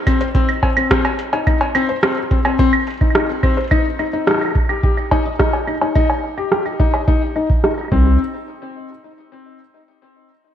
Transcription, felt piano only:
0.07 0.17 C4 loud
0.21 0.27 C5 medium
0.35 0.48 C4 loud
0.63 0.69 C4 medium
0.77 0.89 C4 medium
0.91 1.01 C4 loud
1.33 1.43 D#4 medium
1.47 1.57 D#4 medium
1.75 1.86 C4 loud
1.89 1.95 C5 medium
2.03 2.16 C4 loud
2.31 2.37 C4 medium
2.45 2.58 C4 medium
2.59 2.70 C4 loud
3.01 3.12 D#4 medium
3.15 3.26 D#4 medium
3.43 3.54 C4 loud
3.57 3.64 C5 medium
3.71 3.84 D#4 loud
3.99 4.06 D#4 medium
4.13 4.26 D#4 medium
4.27 4.38 D#4 loud
4.69 4.80 G4 medium
4.83 4.94 G4 medium
5.11 5.22 D#4 loud
5.25 5.32 D#5 medium
5.39 5.53 D#4 loud
5.67 5.74 D#4 medium
5.81 5.94 D#4 medium
5.95 6.06 D#4 loud
6.38 6.48 G4 medium
6.51 6.62 G4 medium
6.80 6.90 D#4 loud
6.94 7.00 D#5 medium
7.08 7.21 D#4 loud
7.36 7.46 D#4 medium
7.64 7.70 D#4 medium
7.92 8.18 C4 medium

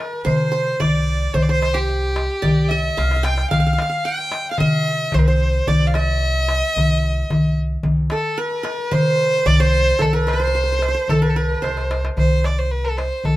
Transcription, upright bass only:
0.26 0.72 C3 medium
0.80 1.27 C2 loud
1.34 2.27 C2 medium
2.43 2.89 C2 medium
2.97 3.43 C2 loud
3.52 3.74 C2 loud
4.61 5.06 C3 medium
5.14 5.60 C2 medium
5.68 6.60 C2 loud
6.76 7.22 C2 medium
7.31 7.77 C2 medium
7.83 8.07 C2 medium
8.92 9.38 C3 loud
9.46 9.92 C2 loud
10.00 10.92 C2 medium
11.08 11.54 C2 medium
11.62 12.08 C2 medium
12.17 13.09 C2 medium
13.24 13.37 C2 medium

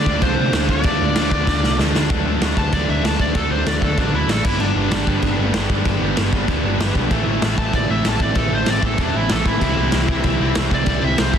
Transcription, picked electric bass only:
0.06 0.21 D2 loud
0.22 0.37 C2 loud
0.37 0.52 C3 medium
0.52 0.83 D2 loud
0.85 1.00 D2 loud
1.01 1.15 D2 medium
1.16 1.31 D2 medium
1.31 1.46 D2 loud
1.48 1.62 D2 loud
1.62 1.78 C2 medium
1.78 1.93 D2 loud
1.94 2.09 D2 loud
2.10 2.21 D2 medium
2.25 2.36 D2 medium
2.41 2.51 D2 medium
2.57 2.67 D2 medium
2.73 2.83 D2 loud
2.88 2.99 D2 medium
3.04 3.14 D2 loud
3.19 3.30 D2 medium
3.35 3.46 D2 medium
3.51 3.61 D2 medium
3.66 3.77 D2 medium
3.82 3.92 D2 medium
3.98 4.08 A1 loud
4.12 4.23 D2 medium
4.28 4.39 A1 loud
4.45 4.55 G1 loud
4.60 4.70 G1 medium
4.76 4.86 G1 medium
4.92 5.02 G1 loud
5.07 5.17 G1 loud
5.23 5.33 G1 loud
5.39 5.49 G1 medium
5.54 5.65 G1 loud
5.70 5.80 G1 medium
5.85 5.96 G1 medium
6.01 6.12 G1 loud
6.18 6.28 G1 medium
6.33 6.43 G1 loud
6.48 6.59 D2 medium
6.63 6.74 G1 medium
6.79 6.89 G1 medium
6.95 7.05 B1 medium
7.11 7.21 A1 medium
7.27 7.37 A1 medium
7.42 7.52 A1 loud
7.58 7.68 A1 medium
7.73 7.84 A1 loud
7.89 8.00 A1 medium
8.05 8.15 A1 loud
8.20 8.30 A1 loud
8.36 8.46 A1 medium
8.52 8.62 A1 medium
8.67 8.78 A1 medium
8.83 8.93 A1 medium
8.98 9.09 E1 loud
9.15 9.25 A1 medium
9.30 9.41 A1 loud
9.46 9.56 A1 loud
9.61 9.72 C2 loud
9.77 9.87 C2 medium
9.92 10.03 C2 loud
10.09 10.19 C2 medium
10.24 10.35 C2 loud
10.40 10.51 C2 medium
10.56 10.66 C2 loud
10.71 10.82 C2 loud
10.87 10.97 C2 loud
11.03 11.13 C2 medium
11.19 11.29 C2 loud
11.34 11.38 C2 loud

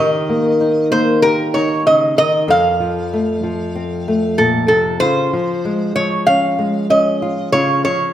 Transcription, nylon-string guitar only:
0.00 2.16 D#3 medium
0.00 1.23 G4 medium
0.29 0.91 A#3 soft
0.61 1.54 D#4 soft
0.92 2.46 A#3 medium
1.25 2.46 G4 medium
1.55 2.46 D#4 soft
1.86 2.18 C#3 medium
2.18 2.49 D#3 soft
2.48 5.01 F2 medium
2.48 4.97 A4 medium
2.80 3.43 F3 soft
3.13 4.07 A3 soft
3.43 5.33 F3 soft
3.75 5.01 C4 soft
4.08 4.98 A3 soft
4.39 4.70 A#2 medium
4.70 5.01 C3 soft
5.01 5.33 C#3 medium
5.01 7.21 F4 medium
5.33 5.96 F3 medium
5.65 6.57 G#3 soft
5.96 7.50 F3 soft
6.28 6.89 C#4 soft
6.59 7.53 G#3 soft
6.90 7.49 C#4 soft
7.22 7.53 F4 soft
7.53 7.85 C#3 medium
7.53 8.13 F4 medium
7.85 8.13 F3 soft

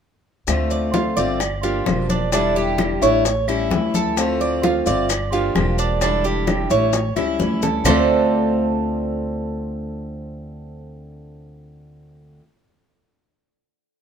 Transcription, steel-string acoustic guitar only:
0.47 1.16 D3 medium
0.47 1.16 A3 medium
0.47 1.17 C4 medium
0.47 1.16 F4 medium
1.17 1.40 A3 medium
1.17 1.40 C4 medium
1.17 1.39 F4 medium
1.41 muted steel-string acoustic guitar stroke medium
1.63 1.85 F3 medium
1.63 1.86 A#3 medium
1.63 1.86 D4 medium
1.63 1.85 G4 medium
1.86 2.32 F3 soft
1.86 2.32 A#3 soft
1.86 2.32 D4 medium
1.86 2.33 G4 medium
2.32 3.01 D3 medium
2.32 3.01 G3 medium
2.32 3.01 D4 medium
2.32 3.00 E4 medium
3.01 3.24 G3 medium
3.01 3.24 D4 medium
3.01 3.24 E4 medium
3.25 muted steel-string acoustic guitar stroke medium
3.48 3.70 G3 medium
3.48 3.70 C#4 medium
3.48 3.70 E4 medium
3.71 4.16 E3 soft
3.71 4.16 G3 soft
3.71 4.17 C#4 soft
3.71 4.17 E4 medium
4.16 4.85 D3 medium
4.16 4.86 A3 medium
4.16 4.86 C4 medium
4.16 4.85 F4 medium
4.86 5.09 A3 soft
4.86 5.09 C4 medium
4.86 5.08 F4 medium
5.10 muted steel-string acoustic guitar stroke medium
5.32 5.54 F3 soft
5.32 5.55 A#3 medium
5.32 5.55 D4 medium
5.32 5.54 G4 medium
5.56 6.01 F3 soft
5.56 6.01 A#3 soft
5.56 6.02 D4 medium
5.56 6.02 G4 soft
6.02 6.70 D3 medium
6.02 6.70 G3 medium
6.02 6.70 D4 medium
6.02 6.69 E4 medium
6.70 6.93 G3 medium
6.70 6.93 D4 medium
6.70 6.93 E4 medium
6.94 muted steel-string acoustic guitar stroke medium
7.16 7.38 G3 soft
7.16 7.39 C#4 medium
7.16 7.38 E4 medium
7.39 7.84 E3 soft
7.39 7.85 G3 soft
7.39 7.85 C#4 medium
7.39 7.85 E4 medium
7.84 12.42 D3 medium
7.84 12.43 A3 medium
7.84 12.44 C4 medium
7.84 12.45 F4 medium

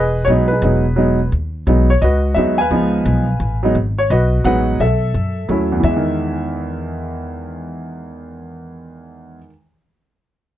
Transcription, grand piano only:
0.00 0.47 G#4 medium
0.00 0.46 B4 medium
0.00 0.28 D#5 medium
0.25 0.49 F#3 medium
0.25 0.49 G#3 medium
0.25 0.30 C#5 medium
0.29 0.49 B3 medium
0.29 0.50 D#4 medium
0.48 0.63 D#4 medium
0.48 1.29 G#4 medium
0.48 1.27 B4 medium
0.63 0.83 F#3 medium
0.63 0.84 G#3 soft
0.63 0.84 B3 soft
0.63 0.84 D#4 medium
0.96 1.17 F#3 medium
0.96 1.18 G#3 medium
0.96 1.18 B3 medium
0.96 1.19 D#4 medium
1.67 1.87 F#3 medium
1.67 1.88 G#3 medium
1.67 1.88 B3 medium
1.67 1.88 D#4 medium
1.90 2.01 C#5 medium
2.02 2.56 F#4 medium
2.02 2.57 B4 medium
2.02 2.34 D#5 medium
2.35 2.57 F#3 medium
2.35 2.57 G#3 medium
2.35 2.58 B3 medium
2.35 2.58 D#4 medium
2.35 2.57 E5 medium
2.58 3.60 B4 medium
2.58 3.60 F5 medium
2.58 3.59 G#5 loud
2.71 3.24 F3 medium
2.71 3.24 G#3 medium
2.71 3.24 B3 medium
2.71 3.25 D#4 medium
3.63 3.74 F#3 medium
3.63 3.75 G#3 medium
3.63 3.75 B3 medium
3.63 3.75 D#4 medium
3.98 4.10 C#5 medium
4.11 4.65 F#4 medium
4.11 4.45 B4 medium
4.11 4.43 D#5 medium
4.44 4.80 F#3 medium
4.44 4.80 G#3 medium
4.44 4.80 B3 medium
4.44 4.81 D#4 medium
4.44 4.78 B4 medium
4.44 4.78 D#5 medium
4.44 4.81 F#5 medium
4.81 5.69 A4 medium
4.81 5.68 E5 medium
5.48 5.84 F#3 medium
5.48 5.84 A3 soft
5.48 5.85 C#4 soft
5.48 5.85 E4 medium
5.72 9.37 E2 medium
5.80 9.41 E3 medium
5.84 9.39 E5 medium
5.88 9.45 G#3 medium
5.97 9.49 D#3 medium

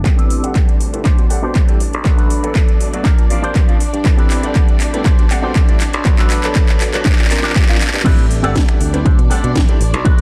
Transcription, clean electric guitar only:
0.04 muted clean electric guitar stroke loud
0.17 0.62 C4 medium
0.17 0.62 G4 medium
0.17 0.63 A4 medium
1.04 1.24 D4 medium
1.04 1.24 G4 medium
1.04 1.25 C5 medium
1.43 1.62 D4 medium
1.43 1.62 G4 medium
1.43 1.63 C5 loud
1.79 muted clean electric guitar stroke soft
2.04 muted clean electric guitar stroke loud
2.17 2.62 D4 medium
2.17 2.62 A4 medium
2.17 2.63 B4 medium
3.04 3.24 D4 medium
3.04 3.24 G4 medium
3.04 3.25 A#4 medium
3.42 3.62 D4 medium
3.42 3.62 G4 medium
3.42 3.62 C5 loud
3.79 muted clean electric guitar stroke soft
4.04 muted clean electric guitar stroke loud
4.17 4.62 C4 medium
4.17 4.62 G4 medium
4.17 4.63 B4 medium
5.04 5.24 D4 medium
5.04 5.25 G4 medium
5.04 5.25 C5 loud
5.42 5.62 D4 medium
5.42 5.62 G4 medium
5.42 5.63 C5 loud
5.80 muted clean electric guitar stroke soft
6.05 muted clean electric guitar stroke loud
6.18 6.62 D4 medium
6.18 6.62 A4 medium
6.18 6.63 B4 medium
7.05 7.24 D4 medium
7.05 7.25 G4 medium
7.05 7.25 A#4 medium
7.43 7.62 D4 medium
7.43 7.62 G4 medium
7.43 7.63 A#4 medium
7.79 muted clean electric guitar stroke soft
8.04 8.24 C4 loud
8.04 8.24 G4 loud
8.04 8.25 A4 loud
8.04 8.25 B4 loud
8.43 8.55 C4 medium
8.43 8.55 G4 medium
8.43 8.56 A4 medium
8.43 8.56 D5 loud
8.68 muted clean electric guitar stroke soft
9.05 9.18 D4 medium
9.05 9.19 G4 medium
9.05 9.19 A4 medium
9.05 9.19 C5 medium
9.30 9.55 D4 medium
9.30 9.56 G4 medium
9.30 9.56 A4 medium
9.30 9.56 D5 medium
9.80 muted clean electric guitar stroke soft
10.05 10.21 D4 loud
10.05 10.21 F#4 loud
10.05 10.21 A4 loud
10.05 10.21 B4 loud

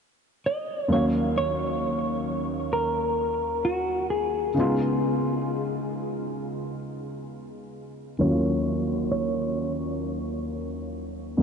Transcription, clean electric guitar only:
0.46 0.92 D#5 medium
0.93 1.05 C#5 medium
1.38 2.72 C#5 medium
2.73 3.66 A#4 medium
3.65 4.10 F#4 medium
4.10 6.78 G#4 medium
8.21 9.10 C#5 medium
9.12 11.43 C#5 medium

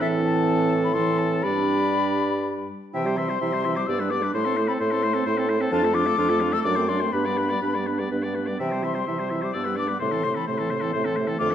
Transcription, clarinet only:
0.01 0.93 C4 loud
0.95 1.46 C4 medium
1.44 2.69 D4 medium
2.94 3.07 E4 medium
3.06 3.19 G4 medium
3.18 3.31 E4 medium
3.30 3.41 G4 medium
3.41 3.55 E4 medium
3.54 3.67 G4 medium
3.65 3.78 E4 medium
3.77 3.88 G4 medium
3.88 4.02 G4 medium
4.00 4.13 D4 medium
4.11 4.24 G4 medium
4.23 4.34 D4 medium
4.34 4.48 E4 medium
4.46 4.59 C4 medium
4.57 4.71 E4 medium
4.69 4.80 C4 medium
4.81 4.94 E4 medium
4.92 5.05 C4 medium
5.04 5.16 E4 medium
5.15 5.25 C4 medium
5.26 5.40 E4 medium
5.38 5.51 C4 medium
5.49 5.62 E4 medium
5.61 5.71 C4 medium
5.72 5.85 D4 medium
5.83 5.96 F4 medium
5.94 6.08 D4 medium
6.06 6.17 F4 medium
6.18 6.31 D4 medium
6.29 6.43 F4 medium
6.41 6.54 D4 medium
6.53 6.65 F4 medium
6.65 6.78 D4 medium
6.77 6.91 C4 medium
6.89 7.03 D4 medium
7.02 7.13 C4 medium
7.14 7.28 D4 medium
7.26 7.40 B3 medium
7.38 7.52 D4 medium
7.50 7.62 B3 medium
7.63 7.76 D4 medium
7.75 7.89 B3 medium
7.87 8.01 D4 medium
8.00 8.11 B3 medium
8.12 8.25 D4 medium
8.24 8.37 B3 medium
8.36 8.50 D4 medium
8.49 8.60 B3 medium
8.60 8.73 E4 medium
8.72 8.86 G4 medium
8.84 8.98 E4 medium
8.96 9.08 G4 soft
9.08 9.21 E4 medium
9.20 9.33 G4 medium
9.31 9.44 E4 medium
9.42 9.54 G4 medium
9.55 9.67 D4 medium
9.66 9.79 B3 medium
9.77 9.91 D4 medium
9.89 10.00 B3 medium
10.01 10.14 A3 medium
10.13 10.26 C4 medium
10.24 10.37 A3 medium
10.36 10.47 C4 medium
10.47 10.61 A3 medium
10.60 10.73 C4 medium
10.72 10.84 A3 medium
10.83 10.94 C4 medium
10.95 11.07 A3 medium
11.05 11.18 C4 medium
11.16 11.29 A3 medium
11.28 11.38 C4 medium
11.38 11.52 A3 medium
11.50 11.55 D4 medium

